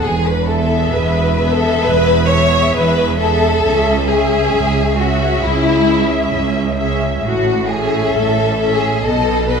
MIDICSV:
0, 0, Header, 1, 6, 480
1, 0, Start_track
1, 0, Key_signature, 4, "major"
1, 0, Tempo, 895522
1, 22, Time_signature, 4, 2, 24, 8
1, 2903, Tempo, 907716
1, 5115, End_track
2, 0, Start_track
2, 0, Title_t, "Violin section"
2, 0, Program_c, 0, 48
2, 261, Note_on_c, 0, 76, 55
2, 730, Note_off_c, 0, 76, 0
2, 739, Note_on_c, 0, 76, 62
2, 1214, Note_off_c, 0, 76, 0
2, 1225, Note_on_c, 0, 76, 62
2, 1700, Note_off_c, 0, 76, 0
2, 1708, Note_on_c, 0, 76, 58
2, 1941, Note_off_c, 0, 76, 0
2, 1948, Note_on_c, 0, 76, 58
2, 2181, Note_off_c, 0, 76, 0
2, 2187, Note_on_c, 0, 76, 60
2, 2655, Note_off_c, 0, 76, 0
2, 2665, Note_on_c, 0, 76, 57
2, 3130, Note_off_c, 0, 76, 0
2, 3142, Note_on_c, 0, 76, 58
2, 3618, Note_off_c, 0, 76, 0
2, 3626, Note_on_c, 0, 76, 53
2, 3860, Note_off_c, 0, 76, 0
2, 4099, Note_on_c, 0, 76, 51
2, 4568, Note_off_c, 0, 76, 0
2, 4579, Note_on_c, 0, 76, 54
2, 4815, Note_on_c, 0, 75, 53
2, 4816, Note_off_c, 0, 76, 0
2, 5054, Note_off_c, 0, 75, 0
2, 5062, Note_on_c, 0, 75, 55
2, 5115, Note_off_c, 0, 75, 0
2, 5115, End_track
3, 0, Start_track
3, 0, Title_t, "Violin section"
3, 0, Program_c, 1, 48
3, 16, Note_on_c, 1, 68, 88
3, 138, Note_off_c, 1, 68, 0
3, 142, Note_on_c, 1, 71, 78
3, 256, Note_on_c, 1, 69, 73
3, 261, Note_off_c, 1, 71, 0
3, 498, Note_off_c, 1, 69, 0
3, 500, Note_on_c, 1, 71, 77
3, 819, Note_off_c, 1, 71, 0
3, 822, Note_on_c, 1, 69, 89
3, 982, Note_off_c, 1, 69, 0
3, 984, Note_on_c, 1, 71, 97
3, 1217, Note_on_c, 1, 73, 91
3, 1226, Note_off_c, 1, 71, 0
3, 1464, Note_off_c, 1, 73, 0
3, 1468, Note_on_c, 1, 71, 89
3, 1706, Note_on_c, 1, 69, 96
3, 1709, Note_off_c, 1, 71, 0
3, 2176, Note_off_c, 1, 69, 0
3, 2186, Note_on_c, 1, 68, 86
3, 2665, Note_off_c, 1, 68, 0
3, 2670, Note_on_c, 1, 66, 82
3, 2904, Note_off_c, 1, 66, 0
3, 2906, Note_on_c, 1, 64, 89
3, 3385, Note_off_c, 1, 64, 0
3, 3868, Note_on_c, 1, 66, 75
3, 4086, Note_off_c, 1, 66, 0
3, 4103, Note_on_c, 1, 68, 74
3, 4337, Note_on_c, 1, 69, 84
3, 4340, Note_off_c, 1, 68, 0
3, 4657, Note_on_c, 1, 68, 79
3, 4658, Note_off_c, 1, 69, 0
3, 4819, Note_off_c, 1, 68, 0
3, 4819, Note_on_c, 1, 69, 88
3, 5061, Note_off_c, 1, 69, 0
3, 5065, Note_on_c, 1, 71, 77
3, 5115, Note_off_c, 1, 71, 0
3, 5115, End_track
4, 0, Start_track
4, 0, Title_t, "Viola section"
4, 0, Program_c, 2, 48
4, 263, Note_on_c, 2, 68, 51
4, 264, Note_on_c, 2, 59, 54
4, 731, Note_off_c, 2, 59, 0
4, 731, Note_off_c, 2, 68, 0
4, 744, Note_on_c, 2, 68, 58
4, 746, Note_on_c, 2, 59, 66
4, 1217, Note_off_c, 2, 68, 0
4, 1218, Note_off_c, 2, 59, 0
4, 1230, Note_on_c, 2, 59, 59
4, 1231, Note_on_c, 2, 68, 65
4, 1703, Note_off_c, 2, 59, 0
4, 1703, Note_off_c, 2, 68, 0
4, 1714, Note_on_c, 2, 68, 58
4, 1716, Note_on_c, 2, 59, 60
4, 1947, Note_off_c, 2, 59, 0
4, 1947, Note_off_c, 2, 68, 0
4, 1954, Note_on_c, 2, 61, 51
4, 1954, Note_on_c, 2, 68, 60
4, 2185, Note_off_c, 2, 61, 0
4, 2185, Note_off_c, 2, 68, 0
4, 2192, Note_on_c, 2, 61, 58
4, 2193, Note_on_c, 2, 68, 55
4, 2658, Note_off_c, 2, 61, 0
4, 2659, Note_off_c, 2, 68, 0
4, 2671, Note_on_c, 2, 61, 57
4, 2672, Note_on_c, 2, 68, 63
4, 3133, Note_off_c, 2, 61, 0
4, 3134, Note_off_c, 2, 68, 0
4, 3145, Note_on_c, 2, 61, 59
4, 3145, Note_on_c, 2, 68, 65
4, 3620, Note_off_c, 2, 61, 0
4, 3620, Note_off_c, 2, 68, 0
4, 3631, Note_on_c, 2, 61, 58
4, 3631, Note_on_c, 2, 68, 53
4, 3863, Note_off_c, 2, 61, 0
4, 3863, Note_off_c, 2, 68, 0
4, 4105, Note_on_c, 2, 69, 51
4, 4107, Note_on_c, 2, 61, 52
4, 4571, Note_off_c, 2, 69, 0
4, 4572, Note_off_c, 2, 61, 0
4, 4583, Note_on_c, 2, 61, 57
4, 4583, Note_on_c, 2, 69, 57
4, 4818, Note_off_c, 2, 61, 0
4, 4818, Note_off_c, 2, 69, 0
4, 4827, Note_on_c, 2, 59, 51
4, 4828, Note_on_c, 2, 69, 51
4, 5060, Note_off_c, 2, 59, 0
4, 5061, Note_off_c, 2, 69, 0
4, 5068, Note_on_c, 2, 59, 52
4, 5068, Note_on_c, 2, 69, 55
4, 5115, Note_off_c, 2, 59, 0
4, 5115, Note_off_c, 2, 69, 0
4, 5115, End_track
5, 0, Start_track
5, 0, Title_t, "Cello section"
5, 0, Program_c, 3, 48
5, 22, Note_on_c, 3, 40, 73
5, 443, Note_off_c, 3, 40, 0
5, 497, Note_on_c, 3, 40, 71
5, 922, Note_off_c, 3, 40, 0
5, 983, Note_on_c, 3, 40, 73
5, 1411, Note_off_c, 3, 40, 0
5, 1468, Note_on_c, 3, 40, 70
5, 1893, Note_off_c, 3, 40, 0
5, 1950, Note_on_c, 3, 37, 74
5, 2371, Note_off_c, 3, 37, 0
5, 2430, Note_on_c, 3, 37, 61
5, 2848, Note_off_c, 3, 37, 0
5, 2902, Note_on_c, 3, 37, 80
5, 3326, Note_off_c, 3, 37, 0
5, 3385, Note_on_c, 3, 37, 69
5, 3810, Note_off_c, 3, 37, 0
5, 3865, Note_on_c, 3, 45, 68
5, 4282, Note_off_c, 3, 45, 0
5, 4341, Note_on_c, 3, 45, 65
5, 4765, Note_off_c, 3, 45, 0
5, 4825, Note_on_c, 3, 47, 66
5, 5115, Note_off_c, 3, 47, 0
5, 5115, End_track
6, 0, Start_track
6, 0, Title_t, "Double bass section"
6, 0, Program_c, 4, 48
6, 26, Note_on_c, 4, 28, 73
6, 446, Note_off_c, 4, 28, 0
6, 504, Note_on_c, 4, 28, 76
6, 925, Note_off_c, 4, 28, 0
6, 984, Note_on_c, 4, 28, 71
6, 1412, Note_off_c, 4, 28, 0
6, 1472, Note_on_c, 4, 28, 66
6, 1895, Note_off_c, 4, 28, 0
6, 1952, Note_on_c, 4, 37, 74
6, 2372, Note_off_c, 4, 37, 0
6, 2432, Note_on_c, 4, 37, 75
6, 2849, Note_off_c, 4, 37, 0
6, 2906, Note_on_c, 4, 37, 64
6, 3328, Note_off_c, 4, 37, 0
6, 3387, Note_on_c, 4, 37, 67
6, 3812, Note_off_c, 4, 37, 0
6, 3871, Note_on_c, 4, 33, 74
6, 4285, Note_off_c, 4, 33, 0
6, 4341, Note_on_c, 4, 33, 70
6, 4765, Note_off_c, 4, 33, 0
6, 4825, Note_on_c, 4, 35, 61
6, 5115, Note_off_c, 4, 35, 0
6, 5115, End_track
0, 0, End_of_file